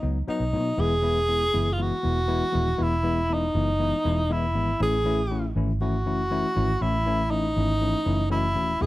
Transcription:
Already playing: D#4
0.02 C#2 F#3 B3 D#4
0.27 F#3 B3 D#4, muted fingered electric bass stroke
0.40 B1
0.52 B2 F#3 B3 D#4
0.77 E1 E3 G#3 B3 E4 G#4
1.02 E3 G#3 B3 E4
1.28 E3 G#3 B3 E4
1.53 F#1 E3 G#3 B3 E4
1.73 F4
1.77 E3 G#3 B3 E4
1.82 F#4
2.03 E1 E3 G#3 B3 E4
2.28 E3 G#3 B3 E4
2.52 D#1 E3 G#3 B3 E4
2.77 E1 E3 G#3 B3 E4
2.83 E4
3.03 E3 G#3 B3 E4
3.29 E3 G#3 B3 E4
3.33 D#4
3.55 F#1 E3 G#3 B3 E4
3.79 E3 G#3 B3 E4
4.04 E1 E3 G#3 B3 E4
4.30 E3 G#3 B3 E4
4.55 G#1 E3 G#3 B3 E4
4.80 A1 E3 A3 C#4 E4 G#4
5.04 E3 A3 C#4 E4
5.30 E3 A3 C#4 E4
5.56 G#1 E3 A3 C#4 E4
5.81 E3 A3 C#4 E4 F#4
6.06 F#1 E3 A3 C#4 E4
6.30 E3 A3 C#4 E4
6.56 G#1 E3 A3 C#4 E4
6.81 A1 E3 A3 C#4 E4
7.06 E3 A3 C#4 E4
7.30 E3 A3 C#4 D#4 E4
7.56 G#1 E3 A3 C#4 E4
7.81 E3 A3 C#4 E4
8.05 F#1 E3 A3 C#4 E4
8.30 E3 A3 C#4 E4 F#4
8.55 D#1 E3 A3 C#4 F#4
8.80 E1 E3 G#3 B3 E4 G#4

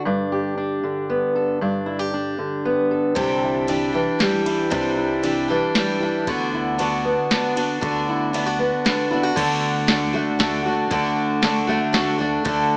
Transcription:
Already playing: D3
0.05 G2 D4
0.32 G4
0.58 D4
0.84 D3
1.10 B3
1.36 A4
1.61 G2 D4
1.86 E4
1.99 G4
2.14 D4
2.38 D3
2.65 B3
2.91 A4
3.15 C2 C3 E3 G3 D4 G4, kick, ride
3.44 E4
3.67 E3 G3 D4 G4, ride
3.93 E3 G3 D4 G4
4.19 E3 G3 D4 G4, snare, ride
4.46 E4, ride
4.70 C2 C3 E3 G3 D4 G4, kick, ride
4.98 E4
5.23 E3 G3 D4 G4, ride
5.48 E3 G3 D4 G4
5.75 E3 G3 D4 G4, snare, ride
6.00 G3 D4 E4 G4
6.27 D2 D3 B3 D4 F#4, kick, ride
6.54 E4
6.78 D3 B3 D4 F#4, ride
7.05 B3
7.30 D3 B3 D4 F#4, snare, ride
7.56 B3 D4 F#4, ride
7.81 D2 D3 B3 D4 F#4, kick, ride
8.09 E4
8.33 D3 B3 D4 E4 F#4, ride
8.46 F#4
8.59 B3
8.85 D3 B3 D4 F#4, snare, ride
9.11 B3 D4 E4 F#4
9.23 F#4
9.36 D2 D3 A3 D4 F#4, kick, crash, ride
9.87 D3 A3 D4 F#4, snare, ride
10.13 A3 D4 F#4
10.39 D2 D3 A3 D4 F#4, snare, ride
10.66 A3 D4 F#4
10.91 D2 D3 A3 D4 F#4, kick, ride
11.42 D3 A3 D4 F#4, snare, ride
11.67 A3 D4 F#4
11.93 D2 D3 A3 D4 F#4, snare, ride
12.18 A3 D4 F#4
12.45 D2 D3 A3 D4 F#4, kick, ride

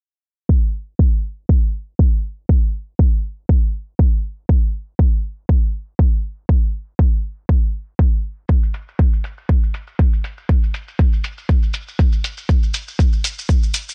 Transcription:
0.49 kick
0.99 kick
1.49 kick
1.99 kick
2.49 kick
2.99 kick
3.49 kick
3.99 kick
4.49 kick
4.99 kick
5.49 kick
5.99 kick
6.49 kick
6.99 kick
7.49 kick
7.99 kick
8.49 kick, maracas
8.63 maracas
8.74 open hi-hat, maracas
8.88 maracas
8.99 kick, maracas
9.13 maracas
9.24 open hi-hat, maracas
9.38 maracas
9.49 kick, maracas
9.63 maracas
9.74 open hi-hat, maracas
9.87 maracas
9.99 kick, maracas
10.13 maracas
10.24 open hi-hat, maracas
10.38 maracas
10.49 kick, maracas
10.64 maracas
10.74 open hi-hat, maracas
10.88 maracas
10.99 kick, maracas
11.13 maracas
11.24 open hi-hat, maracas
11.38 maracas
11.49 kick, maracas
11.63 maracas
11.74 open hi-hat, maracas
11.88 maracas
11.99 kick, maracas
12.12 maracas
12.24 open hi-hat, maracas
12.37 maracas
12.49 kick, maracas
12.63 maracas
12.74 open hi-hat, maracas
12.88 maracas
12.99 kick, maracas
13.13 maracas
13.24 open hi-hat, maracas
13.39 maracas
13.49 kick, maracas
13.63 maracas
13.74 open hi-hat, maracas
13.89 maracas

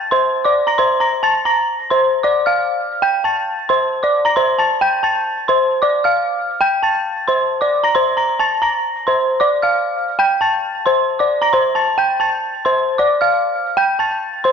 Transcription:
0.11 C5 C6
0.45 D5 D6
0.67 A#5 A#6
0.78 C5 C6
1.00 A#5 A#6
1.23 A5 A6
1.45 A#5 A#6
1.90 C5 C6
2.23 D5 D6
2.46 F5 F6
3.02 G5 G6
3.24 A5 A6
3.69 C5 C6
4.03 D5 D6
4.25 A#5 A#6
4.36 C5 C6
4.59 A5 A6
4.81 G5 G6
5.03 A5 A6
5.48 C5 C6
5.82 D5 D6
6.04 F5 F6
6.61 G5 G6
6.83 A5 A6
7.28 C5 C6
7.61 D5 D6
7.84 A#5 A#6
7.95 C5 C6
8.17 A#5 A#6
8.39 A5 A6
8.62 A#5 A#6
9.07 C5 C6
9.40 D5 D6
9.62 F5 F6
10.19 G5 G6
10.41 A5 A6
10.86 C5 C6
11.19 D5 D6
11.42 A#5 A#6
11.53 C5 C6
11.75 A5 A6
11.98 G5 G6
12.20 A5 A6
12.65 C5 C6
12.98 D5 D6
13.21 F5 F6
13.77 G5 G6
13.99 A5 A6
14.44 C5 C6

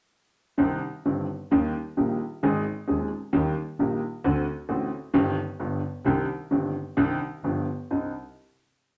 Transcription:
0.58 C2 C3 D#3 G3 C4 G4
1.05 G1 G2 D#3 G3 C4 G4
1.51 D#2 D#3 G3 A#3 G4
1.97 A#1 A#2 D#3 G3 A#3 G4
2.43 G#1 G#2 D#3 G#3 C4 G#4
2.88 D#1 D#2 D#3 G#3 C4 G#4
3.33 D#2 D#3 G3 A#3 G4
3.79 A#1 A#2 D#3 G3 A#3 G4
4.24 D2 D3 A3 C4 F#4
4.69 A1 A2 D3 A3 C4 F#4
5.14 G1 G2 D#3 G3 C4 G4
5.60 G1 G2 D3 G3 B3 G4
6.05 C2 C3 D#3 C4 D4 G4
6.51 G1 G2 D#3 C4 D4 G4
6.96 C2 C3 D#3 C4 D4 G4
7.43 G1 G2 F3 B3 D4 G4
7.91 C2 C4 D4 D#4

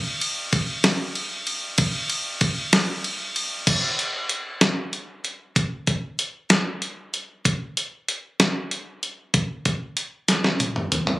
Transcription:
0.21 ride
0.53 kick, ride
0.84 snare, ride
1.15 ride
1.47 ride
1.78 kick, ride
2.10 ride
2.41 kick, ride
2.73 snare, ride
3.04 ride
3.36 ride
3.67 kick, closed hi-hat, crash
3.99 closed hi-hat
4.29 closed hi-hat
4.61 snare, closed hi-hat
4.93 closed hi-hat
5.25 closed hi-hat
5.56 kick, closed hi-hat
5.87 kick, closed hi-hat
6.19 closed hi-hat
6.50 snare, closed hi-hat
6.82 closed hi-hat
7.14 closed hi-hat
7.45 kick, closed hi-hat
7.77 closed hi-hat
8.09 closed hi-hat
8.40 snare, closed hi-hat
8.71 closed hi-hat
9.03 closed hi-hat
9.34 kick, closed hi-hat
9.65 kick, closed hi-hat
9.97 closed hi-hat
10.28 snare, closed hi-hat
10.44 snare
10.60 closed hi-hat, high tom
10.76 mid tom
10.92 closed hi-hat, mid tom
11.07 floor tom

